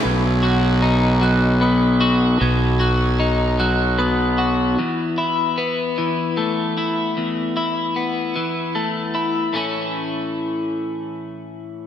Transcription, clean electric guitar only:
X:1
M:6/8
L:1/8
Q:3/8=50
K:Bmix
V:1 name="Clean electric guitar"
B,, F D F, B, F | B,, F D F, B, F | E,, E B, E, A, E | E,, E B, E, A, E |
[A,,E,A,CE]6 |]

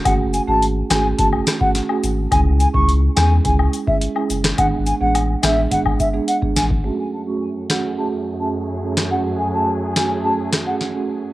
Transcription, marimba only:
X:1
M:4/4
L:1/16
Q:1/4=106
K:F#m
V:1 name="Marimba"
[A,CFG]3 [A,CFG]3 [A,CFG]2 [A,CFG] z2 [A,CFG] z [A,CFG] z2 | [G,CEG]3 [G,CEG]3 [G,CEG]2 [G,CEG] z2 [G,CEG] z [G,CEG] z2 | [G,B,DG]3 [G,B,DG]3 [G,B,DG]2 [G,B,DG] z2 [G,B,DG] z [G,B,DG] z2 | [A,CFG]3 [A,CFG]3 [A,CFG]2 [A,CFG] z2 [A,CFG] z2 [A,CFG] z |
[A,CFG]3 [A,CFG]3 [A,CFG]2 [A,CFG] z2 [A,CFG] z [A,CFG] z2 |]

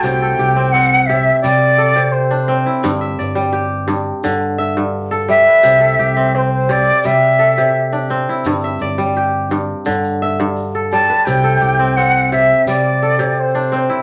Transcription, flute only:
X:1
M:4/4
L:1/16
Q:1/4=86
K:C
V:1 name="Flute"
g4 ^f2 e2 d4 c3 z | z12 z2 e2- | e4 c/2 c/2 c d2 e6 z2 | z12 z2 a2 |
g4 ^f2 e2 d4 c3 z |]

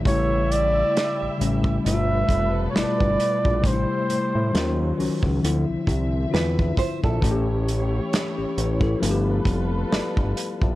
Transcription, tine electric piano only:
X:1
M:4/4
L:1/16
Q:"Swing 16ths" 1/4=67
K:Am
V:1 name="Tine electric piano"
z16 | z16 | z4 z [^CG] [EB] [EA]2 z3 [Ad]2 [Bf] [ea] |]
V:2 name="Tine electric piano"
[^C,G,A,E]4- [C,G,A,E] z [C,G,A,^C]2 [B,,G,A,EF]4 [B,,G,A,E]4 | [C,G,A,DE]4 [_E,_G,_DF]2 [E,G,D_G]2 [=D,=E,F,CE]4 [D,CEF]4 | [E,A,^C^FG]4- [E,A,CFG] z3 [=F,A,B,^FG]4 z4 |]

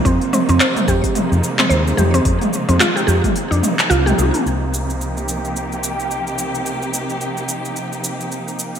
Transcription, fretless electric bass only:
X:1
M:4/4
L:1/16
Q:"Swing 16ths" 1/4=109
K:Cm
V:1 name="Fretless electric bass" clef=bass
F,, z2 F,, z2 F,, z2 F,, z2 E,, z F,, z | F,, z2 F,, z2 F,, z2 F,, z2 C,, z C,, z | C,,16- | C,,16 |]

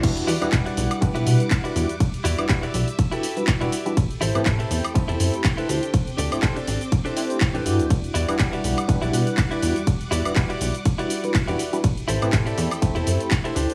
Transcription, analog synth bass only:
X:1
M:4/4
L:1/16
Q:"Swing 16ths" 1/4=122
K:Em
V:1 name="Analog synth bass" clef=bass
E,,2 E,, E,,, E,,,2 B,,, z G,, B,,, B,, z3 E,, z | z E,, E,, z E,,,2 B,,, z6 E,,, z2 | A,,,2 A,,, A,, A,,2 E,, z C,, E,, F,, z3 D,, z | z D,, D,, z D,,,2 A,,, z6 D,,, G,, D,, |
E,,2 E,, z E,,,2 B,,, z G,, B,,, B,, z3 E,, z | z E,, E,, E,,, E,,,2 B,,, z6 E,,, z2 | A,,,2 A,,, A,, A,,2 E,, z C,, E,, F,, z3 D,, z |]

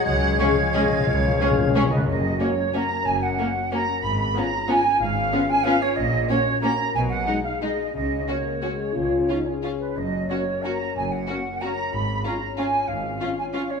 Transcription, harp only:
X:1
M:3/4
L:1/16
Q:1/4=182
K:F#
V:1 name="Harp"
[C,G,Gg] C G C c g c g c G C G, | C, C G C c g c g c G C G, | F,,2 A,2 C2 F2 A2 C2 | F,,2 A,2 C2 F2 A2 C2 |
G,,2 B,2 C2 E2 B2 C2 | G,,2 B,2 C2 E2 B2 C2 | A,,2 A,2 C2 F2 A2 C2 | B,,2 G,2 D2 G2 D2 G,2 |
C,2 G,2 F2 G2 F2 G,2 | C,2 C2 E2 G2 c2 E2 | F,,2 C2 F2 A2 c2 F2 | F,,2 C2 F2 A2 c2 F2 |
G,,2 C2 E2 c2 E2 C2 | G,,2 G,2 E2 c2 E2 C2 |]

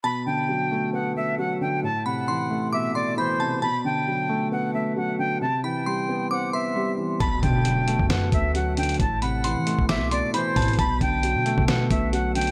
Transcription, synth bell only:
X:1
M:4/4
L:1/8
Q:1/4=134
K:Bphr
V:1 name="Synth bell"
a8 | z b c'2 d' c' b a | a8 | z b c'2 d' c'3 |
a8 | z b c'2 d' c' b a | a8 |]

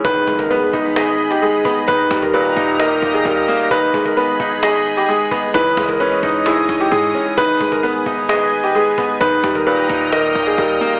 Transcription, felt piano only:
X:1
M:4/4
L:1/8
Q:1/4=131
K:G#m
V:1 name="Felt piano"
D, G, B, D d2 G, B, | D, =G, A,, D d2 G, A, | D, G, B, D d2 G, B, | E, G, C D E2 G, C |
D, G, B, D d2 G, B, | D, =G, A,, D d2 G, A, |]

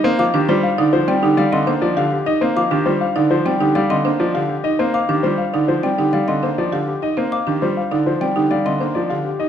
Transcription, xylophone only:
X:1
M:4/4
L:1/16
Q:1/4=101
K:Cdor
V:1 name="Xylophone"
z d' z4 z g z f c' z4 z | z d' z4 z g z f c' z4 z | z d' z4 z g z f c' z4 z | z d' z4 z g z f c' z4 z |]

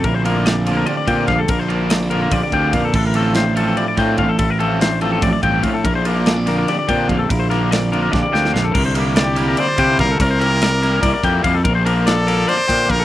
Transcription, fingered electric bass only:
X:1
M:7/8
L:1/16
Q:1/4=145
K:Bblyd
V:1 name="Fingered electric bass" clef=bass
B,,,8 z2 B,,2 B,,,2 | B,,,8 B,,, z D,,2 B,,2 | A,,,8 z2 A,,2 A,,,2 | A,,,8 A,,, z A,,,2 A,,2 |
B,,,8 z2 B,,2 B,,,2 | B,,,8 B,,, z D,,2 B,,,2 | C,,8 z2 C,2 C,,2 | C,,8 C,, z F,,2 F,,2 |
B,,,8 z2 B,,2 B,,,2 |]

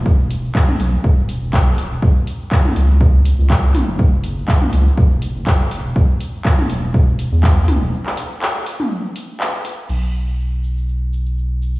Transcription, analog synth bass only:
X:1
M:4/4
L:1/16
Q:"Swing 16ths" 1/4=122
K:F#phr
V:1 name="Analog synth bass" clef=bass
E,,,4 z2 B,,, z D,,,2 E,,, E,,, B,,,2 D,,, E,,, | F,,, z4 z C,,4- C,, C,,3 B,,, F,,,- | F,,,4 z2 C,, z E,,,2 F,,, F,,,3 F,,, E,,, | A,,, z4 z E,,,4- E,,, E,,3 C,, E,,, |
z16 | B,,,16 |]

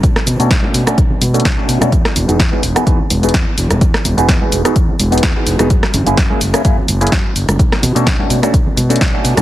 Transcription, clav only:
X:1
M:4/4
L:1/16
Q:"Swing 16ths" 1/4=127
K:E
V:1 name="Clav"
z3 [A,C=DF]2 [A,CDF]2 [A,CDF] z3 [A,CDF]2 [A,CDF]2 [A,CDF] | z3 [B,DFG] z [B,DFG] z [B,DFG] [B,DFG] z2 [B,DFG] z4 | z3 [B,DFG]2 [B,DFG]2 [B,DFG] z3 [B,DFG]2 [B,DFG]2 [B,DFG] | z3 [^A,CEG] z [A,CEG] z [A,CEG] [A,CEG] z2 [A,CEG] z4 |
z3 [A,C=DF]2 [A,CDF]2 [A,CDF] z3 [A,CDF]2 [A,CDF]2 [A,CDF] |]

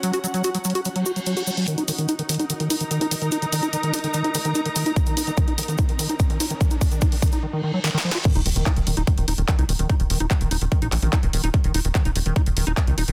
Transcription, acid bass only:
X:1
M:4/4
L:1/16
Q:1/4=146
K:Ebm
V:1 name="Acid bass" clef=bass
G, G G, G, G G, G, G G, G, G G, G, G G, G, | E, E E, E, E E, E, E E, E, E E, E, E E, E, | E E, E, E E, E, E E, E, E E, E, E E, E, E | E, E, E E, E, E E, E, E E, E, E E, E, E E, |
E, E E, E, E E, E, E E, E, E, G, E, E, F, F | E, E E, E, E E, E, E E, E, E E, E, E E, E, | E E, E, E E, E, E E, E, E E, E, E E, E, E | E, E, E E, E, E E, E, E E, E, E E, E, E E, |]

